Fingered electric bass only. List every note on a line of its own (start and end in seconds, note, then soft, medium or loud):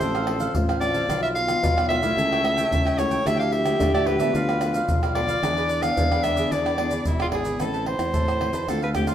0.00 0.47 A1 loud
0.54 1.01 A1 medium
1.09 1.55 B1 loud
1.63 1.75 B2 medium
1.77 2.12 B1 medium
2.17 2.63 C#2 loud
2.71 3.17 C#2 medium
3.26 3.72 D2 loud
3.80 3.91 D3 medium
3.94 4.28 D2 medium
4.34 4.80 D2 loud
4.88 5.35 B1 medium
5.43 5.89 E2 loud
5.97 6.08 E3 medium
6.11 6.45 E2 medium
6.51 6.97 E2 loud
7.05 7.30 E1 medium
7.32 7.57 G#1 medium
7.60 7.94 A1 medium
7.99 8.11 E2 medium
8.14 8.48 A2 medium
8.53 8.65 E2 medium
8.68 9.14 D2 medium